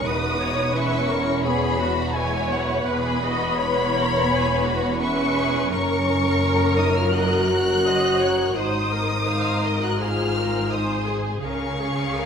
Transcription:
0.02 2.85 E1 medium
0.02 2.85 E2 medium
0.02 0.73 D#4 medium
0.02 0.73 F#4 medium
0.02 0.39 B4 medium
0.02 0.75 D#6 medium
0.39 0.74 B4 medium
0.39 0.74 C#5 medium
0.73 1.44 C#4 medium
0.73 1.45 E4 medium
0.73 1.09 B4 medium
0.73 1.11 E5 medium
0.73 1.45 C#6 medium
1.09 1.44 A#4 medium
1.09 2.15 C#5 medium
1.44 2.14 B3 medium
1.44 1.79 G#4 medium
1.44 1.80 G#4 medium
1.44 2.13 B5 medium
1.79 2.14 F#4 medium
1.79 2.15 F#4 medium
2.13 2.51 G#3 medium
2.13 2.89 E4 medium
2.13 3.58 B4 medium
2.13 2.87 C#5 medium
2.13 2.51 G#5 medium
2.51 2.89 F#3 medium
2.51 2.89 F#5 medium
2.86 5.66 E1 medium
2.86 5.66 E2 medium
2.86 4.94 B3 medium
2.86 3.24 G#4 medium
2.86 3.24 B4 medium
2.86 4.99 B5 loud
3.23 3.60 F#4 medium
3.23 3.59 D#5 medium
3.58 3.94 B4 medium
3.58 4.99 C#5 medium
3.95 4.30 A#4 medium
4.30 4.64 G#4 medium
4.30 4.98 B4 medium
4.65 5.00 F#4 medium
4.98 5.70 C#4 medium
4.98 5.35 E4 medium
4.98 5.69 B4 medium
4.98 5.71 E5 medium
4.98 5.69 C#6 medium
5.35 5.71 G#4 medium
5.70 8.55 F#1 medium
5.70 8.56 F#2 medium
5.70 6.76 C#4 medium
5.70 7.84 A#4 medium
5.70 6.05 A#4 medium
5.70 7.11 C#5 medium
5.70 6.76 C#6 medium
6.06 7.11 A#4 medium
6.77 6.95 D#4 medium
6.77 6.96 D#6 medium
6.96 7.13 F4 medium
6.96 7.14 F6 medium
7.11 8.54 F#4 medium
7.11 7.49 D#5 medium
7.11 8.55 F#6 loud
7.15 7.84 A#4 medium
7.51 7.84 C#5 medium
7.85 8.21 C5 medium
7.85 8.57 C#5 medium
7.85 8.20 D#5 medium
8.20 8.56 A#4 medium
8.20 8.56 C#5 medium
8.54 11.40 G#1 medium
8.54 11.41 G#2 medium
8.54 9.81 D#4 medium
8.54 8.91 C5 medium
8.54 9.27 C5 medium
8.54 9.82 D#6 medium
8.92 9.27 A#4 medium
9.27 10.00 A#4 medium
9.27 9.63 C5 medium
9.27 9.63 F5 medium
9.64 10.00 A#4 medium
9.64 10.00 D#5 medium
9.80 9.99 F#4 medium
9.80 10.01 F#6 medium
9.98 10.72 F4 medium
9.98 10.36 G#4 medium
9.98 10.72 G#4 soft
9.98 10.71 C5 medium
9.98 10.71 F6 medium
10.36 10.72 A#4 medium
10.70 11.07 D#4 medium
10.70 11.43 G#4 medium
10.70 11.43 C5 medium
10.70 11.08 C5 medium
10.70 11.09 D#6 medium
11.07 11.44 G#4 medium
11.44 12.26 C#2 medium
11.44 12.26 C#3 medium
11.44 12.26 C#4 medium
11.44 12.26 G#4 medium
11.44 11.80 A#4 medium
11.44 12.26 F5 medium
11.44 12.26 C#6 medium
11.80 12.16 G#4 soft
12.15 12.26 A#4 medium

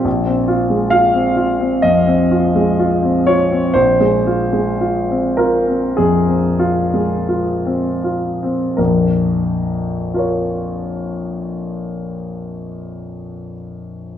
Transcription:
0.05 1.78 A#1 soft
0.26 0.61 C4 soft
0.48 0.82 F4 soft
0.70 1.05 G#3 soft
0.90 1.27 F4 soft
0.90 1.82 F5 medium
1.14 1.50 C4 soft
1.37 1.73 F4 soft
1.59 1.97 C4 soft
1.82 2.21 F2 soft
1.82 3.27 D#5 medium
2.07 2.45 C4 soft
2.31 2.70 F4 soft
2.55 2.94 G#3 soft
2.79 3.17 F4 soft
3.03 3.41 C4 soft
3.27 3.66 F4 soft
3.27 3.75 C#5 medium
3.51 3.90 C4 soft
3.74 5.93 A#1 soft
3.74 5.37 C5 medium
4.00 4.43 G#3 soft
4.27 4.70 F4 soft
4.53 4.98 G#3 soft
4.81 5.26 F4 soft
5.10 5.56 C4 soft
5.37 5.85 F4 soft
5.37 5.96 A#4 soft
5.68 6.15 C4 soft
5.97 6.47 F2 soft
5.97 6.59 G#4 soft
6.28 6.80 C4 soft
6.59 7.27 F4 soft
6.94 7.50 G#3 soft
7.29 7.88 F4 soft
7.65 8.27 C4 soft
8.04 8.64 F4 soft
8.43 8.78 C4 soft
8.77 12.16 A#1 soft
8.77 12.15 F2 soft
8.77 10.15 A#4 soft
10.14 13.51 F4 soft
10.14 13.54 A#4 soft
10.19 13.56 C#5 soft

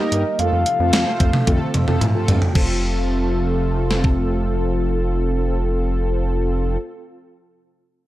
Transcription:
0.00 0.37 D#3 medium
0.00 0.37 G3 medium
0.00 0.23 A#3 medium
0.00 0.37 A#3 medium
0.00 0.23 D#4 medium
0.00 0.23 G4 medium
0.00 0.37 G4 medium
0.00 0.23 A#4 loud
0.00 0.37 A#4 medium
0.00 0.41 D#5 loud
0.12 0.24 G2 medium
0.12 closed hi-hat medium
0.39 0.51 F2 loud
0.39 2.53 C3 medium
0.39 2.53 F3 medium
0.39 0.64 A3 medium
0.39 2.53 A3 medium
0.39 0.64 C4 medium
0.39 2.53 F4 medium
0.39 0.64 F4 medium
0.39 0.64 A4 medium
0.39 2.53 A4 medium
0.39 2.01 F5 loud
0.39 closed hi-hat medium
0.53 0.64 F2 medium
0.66 closed hi-hat medium
0.79 0.91 F2 loud
0.79 0.96 A3 medium
0.79 0.96 C4 medium
0.79 0.96 F4 medium
0.79 0.96 A4 medium
0.93 1.05 F2 loud
0.93 snare loud
0.93 closed hi-hat medium
1.07 1.31 A3 medium
1.07 1.31 C4 medium
1.07 1.31 F4 medium
1.07 1.31 C5 loud
1.20 1.32 F2 loud
1.20 kick medium
1.20 closed hi-hat medium
1.33 mid tom loud
1.47 1.59 F2 loud
1.47 1.72 A3 medium
1.47 1.72 C4 medium
1.47 1.72 F4 medium
1.47 1.72 A4 loud
1.47 kick medium
1.47 closed hi-hat medium
1.47 high tom medium
1.74 1.86 F2 loud
1.74 closed hi-hat medium
1.74 mid tom medium
1.87 2.00 F2 medium
1.87 2.04 A3 medium
1.87 2.04 C4 medium
1.87 2.04 F4 medium
1.87 2.04 A4 loud
1.87 mid tom medium
2.01 2.13 A2 medium
2.01 closed hi-hat medium
2.01 mid tom medium
2.15 2.39 A3 medium
2.15 2.39 C4 medium
2.15 2.39 F4 medium
2.15 2.39 A4 loud
2.28 2.40 G2 medium
2.28 closed hi-hat medium
2.28 floor tom loud
2.42 floor tom loud
2.55 6.77 F1 loud
2.55 6.77 C3 medium
2.55 6.77 F3 medium
2.55 6.77 A3 medium
2.55 6.77 C4 medium
2.55 6.77 F4 medium
2.55 6.77 A4 medium
2.55 6.77 A4 loud
2.55 kick loud
2.55 crash medium
3.91 snare medium
4.04 kick medium

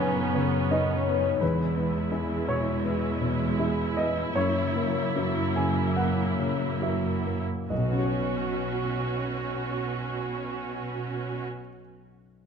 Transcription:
0.00 1.38 F#2 soft
0.00 1.44 F#2 soft
0.00 0.21 C#3 soft
0.00 0.24 C#3 soft
0.00 0.47 B3 soft
0.00 1.07 B3 soft
0.00 1.37 B3 soft
0.00 1.37 C#4 soft
0.00 0.71 D#4 soft
0.00 0.35 C#5 soft
0.00 0.94 C#5 soft
0.00 0.71 D#5 medium
0.00 0.34 G#5 soft
0.00 1.44 A#5 soft
0.25 1.45 C#3 soft
0.35 0.92 C#3 soft
0.35 0.68 C#5 soft
0.48 1.88 B3 soft
0.71 1.03 D#4 soft
0.71 1.18 D#4 soft
0.71 1.03 C#5 soft
0.71 1.38 D#5 medium
0.96 1.45 C#5 soft
1.07 1.42 B3 soft
1.19 1.45 D#4 soft
1.41 2.80 E2 soft
1.41 4.32 E2 soft
1.41 2.84 E2 soft
1.41 4.32 G#3 soft
1.41 7.43 E4 soft
1.41 2.43 B4 medium
1.66 3.08 B2 soft
1.77 2.33 B3 soft
1.90 3.33 B3 soft
2.12 2.44 E4 soft
2.12 2.60 E4 soft
2.12 2.44 G#4 soft
2.37 3.84 G#4 soft
2.48 3.06 B2 soft
2.48 3.93 C#5 medium
2.61 3.58 E4 soft
2.84 4.39 E2 soft
2.84 3.44 B3 soft
3.09 4.39 B2 soft
3.21 3.81 B2 soft
3.34 4.39 B3 soft
3.59 3.93 E4 soft
3.59 4.09 E4 soft
3.59 3.94 G#4 soft
3.85 4.39 G#4 soft
3.97 4.36 B3 soft
3.97 4.33 D#5 medium
4.11 5.14 E4 soft
4.36 5.93 F#2 soft
4.36 7.43 F#2 medium
4.36 5.96 F#2 soft
4.36 7.43 A#3 soft
4.36 5.52 C#5 medium
4.63 6.24 C#3 soft
4.76 5.40 A#3 soft
4.89 6.52 A#3 soft
5.16 5.68 E4 soft
5.16 5.52 E4 soft
5.16 5.52 F#4 soft
5.42 7.10 F#4 soft
5.56 6.23 C#3 soft
5.56 5.94 G#5 medium
5.69 6.81 E4 soft
5.96 7.74 F#2 soft
5.96 6.65 A#3 soft
5.96 6.78 F#5 soft
6.25 7.74 C#3 soft
6.39 7.09 C#3 soft
6.53 7.74 A#3 soft
6.82 7.22 E4 soft
6.82 7.40 E4 soft
6.82 7.23 F#4 soft
6.82 7.24 E5 soft
7.12 7.91 F#4 soft
7.26 7.71 A#3 soft
7.41 7.74 E4 soft
7.70 11.46 B1 soft
7.70 11.61 B2 soft
7.70 11.46 B2 soft
7.70 11.46 C#4 soft
7.70 11.45 F#4 soft
7.70 11.46 D#5 soft
7.78 11.53 B2 soft
7.78 11.53 B3 soft
7.84 11.60 B3 soft
7.84 11.60 C#4 soft
7.92 11.67 C#4 soft
7.92 11.67 F#4 soft
7.98 11.74 F#4 soft
7.98 11.74 C#5 soft
8.06 11.81 C#5 soft

